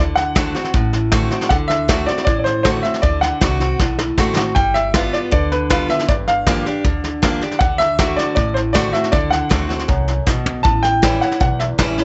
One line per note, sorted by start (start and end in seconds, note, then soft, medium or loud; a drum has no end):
0.00 0.51 D2 medium
0.00 0.34 D3 medium
0.16 0.88 F#5 loud
0.16 snare soft
0.35 0.54 D3 medium
0.35 0.54 A3 medium
0.35 0.54 C4 medium
0.35 0.53 F#4 medium
0.35 kick loud
0.35 snare loud
0.35 hi-hat pedal loud
0.55 0.74 C4 medium
0.55 0.73 F#4 medium
0.55 snare soft
0.64 snare soft
0.74 1.27 A1 medium
0.74 1.46 A2 medium
0.74 kick loud
0.74 snare soft
0.93 snare soft
1.12 1.30 D3 medium
1.12 1.31 A3 medium
1.12 1.31 C4 medium
1.12 1.29 F#4 loud
1.12 kick medium
1.12 snare loud
1.12 hi-hat pedal medium
1.31 1.50 C4 soft
1.31 1.49 F#4 medium
1.31 snare soft
1.41 snare soft
1.49 2.04 D2 medium
1.49 1.87 D3 medium
1.49 1.54 F#5 loud
1.49 kick loud
1.49 snare soft
1.68 2.08 E5 loud
1.68 snare soft
1.88 2.07 D3 medium
1.88 2.07 A3 medium
1.88 2.07 C4 medium
1.88 2.06 F#4 medium
1.88 kick medium
1.88 snare loud
1.88 hi-hat pedal medium
2.06 2.26 C4 soft
2.06 2.25 F#4 medium
2.06 2.23 D5 medium
2.06 snare soft
2.18 snare soft
2.25 2.80 A1 medium
2.25 2.99 A2 loud
2.25 2.38 D5 loud
2.25 kick loud
2.25 snare soft
2.39 2.45 D5 medium
2.44 2.62 C5 medium
2.44 snare soft
2.63 2.83 D3 medium
2.63 2.83 A3 medium
2.63 2.83 C4 medium
2.63 2.82 F#4 loud
2.63 2.68 C5 medium
2.63 kick medium
2.63 snare loud
2.63 hi-hat pedal medium
2.83 3.03 C4 medium
2.83 3.02 F#4 medium
2.83 3.01 E5 medium
2.83 snare soft
2.94 snare soft
3.02 3.30 D2 loud
3.02 3.40 D3 medium
3.02 3.22 D5 loud
3.02 kick loud
3.02 snare soft
3.21 3.94 F#5 loud
3.21 snare soft
3.41 3.74 C2 medium
3.41 3.59 D3 medium
3.41 3.60 A3 medium
3.41 3.60 C4 medium
3.41 3.59 F#4 loud
3.41 kick loud
3.41 snare loud
3.41 hi-hat pedal loud
3.60 3.79 C4 soft
3.60 3.78 F#4 medium
3.60 snare soft
3.80 4.12 B1 medium
3.80 4.52 A2 medium
3.80 kick loud
3.80 snare medium
3.99 snare medium
4.18 4.50 A1 medium
4.18 4.36 D3 medium
4.18 4.36 A3 medium
4.18 4.36 C4 medium
4.18 4.35 F#4 loud
4.18 kick medium
4.18 snare medium
4.18 hi-hat pedal medium
4.36 4.55 C4 soft
4.36 4.55 F#4 medium
4.36 snare medium
4.55 5.09 G1 medium
4.55 4.93 G3 medium
4.55 4.75 G5 loud
4.55 kick loud
4.55 snare soft
4.74 5.14 E5 loud
4.74 snare soft
4.94 5.30 G3 medium
4.94 5.30 B3 medium
4.94 5.31 F4 medium
4.94 kick loud
4.94 snare loud
4.94 hi-hat pedal medium
5.13 5.18 D5 medium
5.13 snare soft
5.31 5.86 D2 medium
5.31 6.04 D3 medium
5.31 5.50 D5 medium
5.31 kick loud
5.31 snare soft
5.52 5.69 B4 medium
5.52 snare soft
5.70 5.88 G3 medium
5.70 5.89 B3 medium
5.70 5.87 F4 loud
5.70 5.90 B4 medium
5.70 kick medium
5.70 snare loud
5.70 hi-hat pedal medium
5.88 6.08 B3 soft
5.88 6.07 F4 medium
5.88 6.09 E5 loud
5.88 snare soft
5.99 snare soft
6.08 6.62 G1 medium
6.08 6.81 G2 medium
6.08 6.13 D5 medium
6.08 kick loud
6.08 snare soft
6.28 7.00 F5 loud
6.28 snare soft
6.47 6.65 F3 medium
6.47 6.65 A#3 medium
6.47 6.65 D4 medium
6.47 6.65 G4 loud
6.47 kick loud
6.47 snare loud
6.47 hi-hat pedal loud
6.66 6.85 D4 medium
6.66 6.84 G4 medium
6.66 snare soft
6.85 7.38 D2 medium
6.85 7.57 D3 loud
6.85 kick loud
6.85 snare soft
7.04 snare soft
7.22 7.40 F3 medium
7.22 7.41 A#3 medium
7.22 7.41 D4 loud
7.22 7.40 G4 medium
7.22 kick medium
7.22 snare loud
7.22 hi-hat pedal medium
7.41 7.60 D4 medium
7.41 7.60 G4 medium
7.41 snare soft
7.51 snare soft
7.59 8.14 D2 medium
7.59 7.97 D3 medium
7.59 7.77 F#5 loud
7.59 kick loud
7.59 snare soft
7.78 8.18 E5 loud
7.78 snare soft
7.98 8.35 D3 medium
7.98 8.35 A3 medium
7.98 8.35 C4 medium
7.98 8.35 F#4 loud
7.98 kick loud
7.98 snare loud
7.98 hi-hat pedal loud
8.16 8.33 D5 loud
8.16 snare soft
8.35 8.90 A1 medium
8.35 9.09 A2 medium
8.35 8.55 D5 medium
8.35 kick loud
8.35 snare soft
8.54 8.59 C5 medium
8.54 snare soft
8.73 8.93 D3 medium
8.73 8.93 A3 medium
8.73 8.93 C4 medium
8.73 8.91 F#4 loud
8.73 8.93 D5 loud
8.73 kick medium
8.73 snare loud
8.73 hi-hat pedal medium
8.92 9.12 C4 soft
8.92 9.11 F#4 medium
8.92 9.13 E5 medium
8.92 snare soft
9.04 snare soft
9.12 9.39 D2 medium
9.12 9.48 D3 loud
9.12 9.30 D5 medium
9.12 kick loud
9.12 snare soft
9.31 10.03 F#5 loud
9.31 snare soft
9.49 9.83 D2 medium
9.49 9.68 D3 medium
9.49 9.69 A3 medium
9.49 9.69 C4 medium
9.49 9.68 F#4 medium
9.49 kick loud
9.49 snare loud
9.49 hi-hat pedal loud
9.69 9.88 C4 soft
9.69 9.88 F#4 medium
9.69 snare soft
9.79 snare soft
9.88 10.21 C2 medium
9.88 10.25 F#2 medium
9.88 kick loud
9.88 snare soft
10.08 snare soft
10.26 10.59 B1 medium
10.26 10.63 B2 medium
10.26 kick medium
10.26 snare medium
10.26 hi-hat pedal medium
10.46 floor tom medium
10.63 11.18 A1 medium
10.63 11.36 A2 medium
10.63 10.81 A5 loud
10.63 kick loud
10.63 snare soft
10.83 11.18 G5 loud
10.83 snare soft
11.02 11.21 E3 medium
11.02 11.21 G3 medium
11.02 11.21 C#4 medium
11.02 11.21 E4 medium
11.02 kick medium
11.02 snare loud
11.02 hi-hat pedal medium
11.21 11.41 C#4 soft
11.21 11.40 E4 medium
11.21 11.39 F#5 medium
11.21 snare soft
11.32 snare soft
11.40 11.73 B1 medium
11.40 12.04 E2 medium
11.40 11.58 F#5 medium
11.40 kick loud
11.40 snare soft
11.59 11.64 E5 medium
11.59 snare soft
11.78 12.04 A1 medium
11.78 11.97 E3 medium
11.78 11.97 G3 loud
11.78 11.97 C#4 medium
11.78 11.96 E4 loud
11.78 kick medium
11.78 snare loud
11.78 hi-hat pedal medium
11.98 12.04 C#4 medium
11.98 12.04 E4 medium
11.98 snare soft